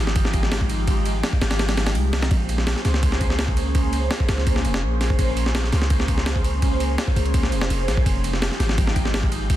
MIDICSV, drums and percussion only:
0, 0, Header, 1, 2, 480
1, 0, Start_track
1, 0, Key_signature, -5, "minor"
1, 0, Tempo, 359281
1, 1169, Time_signature, 4, 2, 24, 8
1, 12780, End_track
2, 0, Start_track
2, 0, Title_t, "Drums"
2, 96, Note_on_c, 9, 38, 58
2, 208, Note_on_c, 9, 51, 93
2, 210, Note_on_c, 9, 36, 117
2, 229, Note_off_c, 9, 38, 0
2, 333, Note_on_c, 9, 38, 59
2, 342, Note_off_c, 9, 51, 0
2, 344, Note_off_c, 9, 36, 0
2, 448, Note_on_c, 9, 51, 70
2, 450, Note_on_c, 9, 36, 96
2, 467, Note_off_c, 9, 38, 0
2, 575, Note_on_c, 9, 38, 51
2, 581, Note_off_c, 9, 51, 0
2, 583, Note_off_c, 9, 36, 0
2, 690, Note_off_c, 9, 38, 0
2, 690, Note_on_c, 9, 38, 125
2, 690, Note_on_c, 9, 51, 96
2, 815, Note_on_c, 9, 36, 97
2, 824, Note_off_c, 9, 38, 0
2, 824, Note_off_c, 9, 51, 0
2, 929, Note_on_c, 9, 51, 71
2, 949, Note_off_c, 9, 36, 0
2, 1063, Note_off_c, 9, 51, 0
2, 1169, Note_on_c, 9, 51, 88
2, 1170, Note_on_c, 9, 36, 110
2, 1303, Note_off_c, 9, 51, 0
2, 1304, Note_off_c, 9, 36, 0
2, 1410, Note_on_c, 9, 51, 69
2, 1543, Note_off_c, 9, 51, 0
2, 1649, Note_on_c, 9, 38, 122
2, 1649, Note_on_c, 9, 51, 91
2, 1774, Note_on_c, 9, 36, 100
2, 1783, Note_off_c, 9, 38, 0
2, 1783, Note_off_c, 9, 51, 0
2, 1890, Note_on_c, 9, 38, 110
2, 1890, Note_on_c, 9, 51, 83
2, 1908, Note_off_c, 9, 36, 0
2, 2013, Note_off_c, 9, 38, 0
2, 2013, Note_off_c, 9, 51, 0
2, 2013, Note_on_c, 9, 38, 104
2, 2013, Note_on_c, 9, 51, 78
2, 2129, Note_off_c, 9, 38, 0
2, 2129, Note_off_c, 9, 51, 0
2, 2129, Note_on_c, 9, 38, 107
2, 2129, Note_on_c, 9, 51, 84
2, 2252, Note_off_c, 9, 38, 0
2, 2252, Note_off_c, 9, 51, 0
2, 2252, Note_on_c, 9, 38, 106
2, 2252, Note_on_c, 9, 51, 81
2, 2370, Note_off_c, 9, 38, 0
2, 2370, Note_off_c, 9, 51, 0
2, 2370, Note_on_c, 9, 38, 105
2, 2370, Note_on_c, 9, 51, 80
2, 2492, Note_off_c, 9, 38, 0
2, 2492, Note_off_c, 9, 51, 0
2, 2492, Note_on_c, 9, 38, 106
2, 2492, Note_on_c, 9, 51, 82
2, 2607, Note_off_c, 9, 51, 0
2, 2607, Note_on_c, 9, 51, 94
2, 2625, Note_off_c, 9, 38, 0
2, 2740, Note_off_c, 9, 51, 0
2, 2846, Note_on_c, 9, 38, 105
2, 2846, Note_on_c, 9, 51, 79
2, 2972, Note_off_c, 9, 38, 0
2, 2972, Note_off_c, 9, 51, 0
2, 2972, Note_on_c, 9, 38, 111
2, 2972, Note_on_c, 9, 51, 78
2, 3085, Note_off_c, 9, 51, 0
2, 3085, Note_on_c, 9, 51, 89
2, 3087, Note_on_c, 9, 36, 113
2, 3106, Note_off_c, 9, 38, 0
2, 3218, Note_off_c, 9, 51, 0
2, 3220, Note_off_c, 9, 36, 0
2, 3327, Note_on_c, 9, 51, 71
2, 3450, Note_on_c, 9, 38, 49
2, 3460, Note_off_c, 9, 51, 0
2, 3566, Note_off_c, 9, 38, 0
2, 3566, Note_on_c, 9, 38, 117
2, 3566, Note_on_c, 9, 51, 91
2, 3691, Note_off_c, 9, 38, 0
2, 3691, Note_on_c, 9, 38, 38
2, 3699, Note_off_c, 9, 51, 0
2, 3806, Note_off_c, 9, 38, 0
2, 3806, Note_on_c, 9, 38, 47
2, 3806, Note_on_c, 9, 51, 70
2, 3929, Note_off_c, 9, 38, 0
2, 3929, Note_on_c, 9, 38, 59
2, 3940, Note_off_c, 9, 51, 0
2, 4045, Note_on_c, 9, 51, 91
2, 4047, Note_on_c, 9, 36, 113
2, 4062, Note_off_c, 9, 38, 0
2, 4170, Note_on_c, 9, 38, 59
2, 4179, Note_off_c, 9, 51, 0
2, 4181, Note_off_c, 9, 36, 0
2, 4285, Note_on_c, 9, 51, 67
2, 4287, Note_on_c, 9, 36, 99
2, 4304, Note_off_c, 9, 38, 0
2, 4411, Note_on_c, 9, 38, 52
2, 4418, Note_off_c, 9, 51, 0
2, 4420, Note_off_c, 9, 36, 0
2, 4525, Note_off_c, 9, 38, 0
2, 4525, Note_on_c, 9, 38, 125
2, 4525, Note_on_c, 9, 51, 92
2, 4652, Note_on_c, 9, 36, 100
2, 4658, Note_off_c, 9, 38, 0
2, 4658, Note_off_c, 9, 51, 0
2, 4767, Note_on_c, 9, 51, 70
2, 4786, Note_off_c, 9, 36, 0
2, 4901, Note_off_c, 9, 51, 0
2, 5007, Note_on_c, 9, 51, 90
2, 5008, Note_on_c, 9, 36, 113
2, 5140, Note_off_c, 9, 51, 0
2, 5142, Note_off_c, 9, 36, 0
2, 5247, Note_on_c, 9, 51, 71
2, 5381, Note_off_c, 9, 51, 0
2, 5486, Note_on_c, 9, 38, 121
2, 5486, Note_on_c, 9, 51, 90
2, 5613, Note_on_c, 9, 36, 97
2, 5620, Note_off_c, 9, 38, 0
2, 5620, Note_off_c, 9, 51, 0
2, 5727, Note_on_c, 9, 38, 106
2, 5727, Note_on_c, 9, 51, 84
2, 5747, Note_off_c, 9, 36, 0
2, 5853, Note_off_c, 9, 38, 0
2, 5853, Note_on_c, 9, 38, 35
2, 5860, Note_off_c, 9, 51, 0
2, 5968, Note_on_c, 9, 51, 89
2, 5969, Note_on_c, 9, 36, 114
2, 5986, Note_off_c, 9, 38, 0
2, 6092, Note_on_c, 9, 38, 57
2, 6102, Note_off_c, 9, 51, 0
2, 6103, Note_off_c, 9, 36, 0
2, 6209, Note_on_c, 9, 51, 67
2, 6226, Note_off_c, 9, 38, 0
2, 6334, Note_on_c, 9, 38, 119
2, 6343, Note_off_c, 9, 51, 0
2, 6468, Note_off_c, 9, 38, 0
2, 6690, Note_on_c, 9, 38, 52
2, 6690, Note_on_c, 9, 51, 72
2, 6815, Note_on_c, 9, 36, 96
2, 6824, Note_off_c, 9, 38, 0
2, 6824, Note_off_c, 9, 51, 0
2, 6930, Note_on_c, 9, 51, 91
2, 6931, Note_off_c, 9, 36, 0
2, 6931, Note_on_c, 9, 36, 113
2, 7064, Note_off_c, 9, 36, 0
2, 7064, Note_off_c, 9, 51, 0
2, 7170, Note_on_c, 9, 51, 71
2, 7297, Note_on_c, 9, 38, 50
2, 7304, Note_off_c, 9, 51, 0
2, 7411, Note_off_c, 9, 38, 0
2, 7411, Note_on_c, 9, 38, 121
2, 7411, Note_on_c, 9, 51, 90
2, 7535, Note_off_c, 9, 38, 0
2, 7535, Note_on_c, 9, 38, 39
2, 7545, Note_off_c, 9, 51, 0
2, 7648, Note_off_c, 9, 38, 0
2, 7648, Note_on_c, 9, 38, 45
2, 7648, Note_on_c, 9, 51, 72
2, 7770, Note_off_c, 9, 38, 0
2, 7770, Note_on_c, 9, 38, 57
2, 7782, Note_off_c, 9, 51, 0
2, 7886, Note_on_c, 9, 51, 92
2, 7889, Note_on_c, 9, 36, 113
2, 7904, Note_off_c, 9, 38, 0
2, 8013, Note_on_c, 9, 38, 58
2, 8020, Note_off_c, 9, 51, 0
2, 8022, Note_off_c, 9, 36, 0
2, 8126, Note_on_c, 9, 51, 69
2, 8128, Note_on_c, 9, 36, 95
2, 8147, Note_off_c, 9, 38, 0
2, 8251, Note_on_c, 9, 38, 54
2, 8260, Note_off_c, 9, 51, 0
2, 8262, Note_off_c, 9, 36, 0
2, 8366, Note_off_c, 9, 38, 0
2, 8366, Note_on_c, 9, 38, 119
2, 8366, Note_on_c, 9, 51, 91
2, 8493, Note_on_c, 9, 36, 101
2, 8499, Note_off_c, 9, 38, 0
2, 8499, Note_off_c, 9, 51, 0
2, 8610, Note_on_c, 9, 51, 70
2, 8627, Note_off_c, 9, 36, 0
2, 8744, Note_off_c, 9, 51, 0
2, 8848, Note_on_c, 9, 51, 88
2, 8849, Note_on_c, 9, 36, 109
2, 8981, Note_off_c, 9, 51, 0
2, 8982, Note_off_c, 9, 36, 0
2, 9089, Note_on_c, 9, 51, 69
2, 9222, Note_off_c, 9, 51, 0
2, 9328, Note_on_c, 9, 38, 120
2, 9328, Note_on_c, 9, 51, 91
2, 9452, Note_on_c, 9, 36, 95
2, 9462, Note_off_c, 9, 38, 0
2, 9462, Note_off_c, 9, 51, 0
2, 9570, Note_on_c, 9, 51, 74
2, 9586, Note_off_c, 9, 36, 0
2, 9692, Note_off_c, 9, 51, 0
2, 9692, Note_on_c, 9, 51, 45
2, 9806, Note_off_c, 9, 51, 0
2, 9806, Note_on_c, 9, 51, 90
2, 9807, Note_on_c, 9, 36, 117
2, 9931, Note_on_c, 9, 38, 59
2, 9940, Note_off_c, 9, 51, 0
2, 9941, Note_off_c, 9, 36, 0
2, 10048, Note_on_c, 9, 51, 69
2, 10065, Note_off_c, 9, 38, 0
2, 10173, Note_on_c, 9, 38, 118
2, 10182, Note_off_c, 9, 51, 0
2, 10291, Note_on_c, 9, 51, 92
2, 10307, Note_off_c, 9, 38, 0
2, 10424, Note_off_c, 9, 51, 0
2, 10531, Note_on_c, 9, 38, 52
2, 10531, Note_on_c, 9, 51, 69
2, 10654, Note_on_c, 9, 36, 98
2, 10664, Note_off_c, 9, 38, 0
2, 10664, Note_off_c, 9, 51, 0
2, 10770, Note_off_c, 9, 36, 0
2, 10770, Note_on_c, 9, 36, 112
2, 10770, Note_on_c, 9, 51, 90
2, 10903, Note_off_c, 9, 36, 0
2, 10904, Note_off_c, 9, 51, 0
2, 11012, Note_on_c, 9, 51, 70
2, 11135, Note_on_c, 9, 38, 48
2, 11145, Note_off_c, 9, 51, 0
2, 11250, Note_off_c, 9, 38, 0
2, 11250, Note_on_c, 9, 38, 120
2, 11250, Note_on_c, 9, 51, 92
2, 11376, Note_off_c, 9, 38, 0
2, 11376, Note_on_c, 9, 38, 39
2, 11384, Note_off_c, 9, 51, 0
2, 11490, Note_off_c, 9, 38, 0
2, 11490, Note_on_c, 9, 38, 46
2, 11490, Note_on_c, 9, 51, 70
2, 11613, Note_off_c, 9, 38, 0
2, 11613, Note_on_c, 9, 38, 58
2, 11624, Note_off_c, 9, 51, 0
2, 11729, Note_on_c, 9, 51, 89
2, 11730, Note_on_c, 9, 36, 114
2, 11746, Note_off_c, 9, 38, 0
2, 11855, Note_on_c, 9, 38, 59
2, 11862, Note_off_c, 9, 51, 0
2, 11863, Note_off_c, 9, 36, 0
2, 11970, Note_on_c, 9, 36, 95
2, 11970, Note_on_c, 9, 51, 69
2, 11988, Note_off_c, 9, 38, 0
2, 12096, Note_on_c, 9, 38, 52
2, 12103, Note_off_c, 9, 51, 0
2, 12104, Note_off_c, 9, 36, 0
2, 12211, Note_off_c, 9, 38, 0
2, 12211, Note_on_c, 9, 38, 122
2, 12211, Note_on_c, 9, 51, 93
2, 12335, Note_on_c, 9, 36, 100
2, 12344, Note_off_c, 9, 38, 0
2, 12344, Note_off_c, 9, 51, 0
2, 12450, Note_on_c, 9, 51, 70
2, 12469, Note_off_c, 9, 36, 0
2, 12583, Note_off_c, 9, 51, 0
2, 12690, Note_on_c, 9, 51, 91
2, 12691, Note_on_c, 9, 36, 107
2, 12780, Note_off_c, 9, 36, 0
2, 12780, Note_off_c, 9, 51, 0
2, 12780, End_track
0, 0, End_of_file